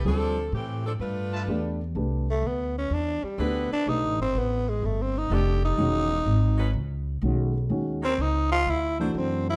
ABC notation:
X:1
M:4/4
L:1/8
Q:"Swing" 1/4=125
K:Ephr
V:1 name="Trumpet section"
z4 z [FBea] z2 | z8 | z8 | z8 |
z8 |]
V:2 name="Grand piano"
[G,CFA] z4 z [A,DGd] z | [A,DGB] z4 z [A,DGB] z | [A,DGB] z4 z [A,DGd] z | [^D,^G,^C^F] z4 z [D,G,CF] z |
[_E,_A,_D_G] z4 [=E,=A,=D^F]3 |]
V:3 name="Saxophone section"
z8 | z6 [E,CDB]2 | z6 [G,B,^DA]2 | [^F,^C^D^G] z2 [F,CDB] z4 |
z [_G,_D_E_B] z3 [^F,=D=Ec] z2 |]
V:4 name="Saxophone section"
[F,CDA]2 [E,A,CG] [F,CDA] [A,DFB]3 z | z8 | z8 | z8 |
z8 |]
V:5 name="Tenor saxophone"
z8 | z A, B, _D =D G, B, D | ^D C B, _A, (3=A, C D G D- | ^D4 z4 |
z C _E F =E A, C E |]
V:6 name="Upright bass" clef=bass
D,,2 A,,2 G,,2 E,,2 | C,,2 D,,2 E,, z D,, z | (3B,,, A,,, G,,, A,,,2 G,,,2 F,,,2 | E,,,2 ^G,,,2 ^C,,2 B,,,2 |
_E,,2 _D,,2 =D,,2 ^F,,2 |]